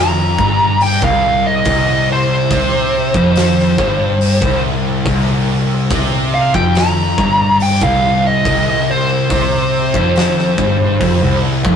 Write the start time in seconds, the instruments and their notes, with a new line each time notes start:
Already playing: double bass F1, distorted electric guitar F2
0.00 lead electric guitar A#5
0.39 double bass G1, distorted electric guitar G2, kick
0.81 lead electric guitar G5, open hi-hat
1.02 double bass C2, distorted electric guitar C2, lead electric guitar F5, kick
1.47 lead electric guitar D#5
1.65 double bass C2, distorted electric guitar C2, kick, open hi-hat
2.13 lead electric guitar C5
2.50 double bass C2, distorted electric guitar C3, kick, open hi-hat
3.14 double bass F1, distorted electric guitar F2, kick
3.36 snare, open hi-hat
3.59 snare
3.78 double bass G1, distorted electric guitar G2, kick
4.21 open hi-hat
4.42 double bass C2, distorted electric guitar C2, kick
5.06 double bass C2, distorted electric guitar C2, kick, open hi-hat
5.91 double bass C2, distorted electric guitar C3, kick, open hi-hat
6.34 lead electric guitar F5
6.54 double bass F1, distorted electric guitar F2, lead electric guitar G5, kick
6.75 lead electric guitar A#5, snare, open hi-hat
7.18 double bass G1, distorted electric guitar G2, kick
7.60 lead electric guitar G5, open hi-hat
7.82 double bass C2, distorted electric guitar C2, lead electric guitar F5, kick
8.27 lead electric guitar D#5
8.45 distorted electric guitar C2, double bass C2, kick, open hi-hat
8.91 lead electric guitar C5
9.30 double bass C2, distorted electric guitar C3, kick, open hi-hat
9.94 double bass F1, distorted electric guitar F2, kick
10.16 snare, open hi-hat
10.39 snare
10.58 double bass G1, distorted electric guitar G2, kick
11.00 double bass F1, distorted electric guitar F2, kick, open hi-hat
11.23 double bass C2, distorted electric guitar C2
11.65 double bass F1, distorted electric guitar F2, kick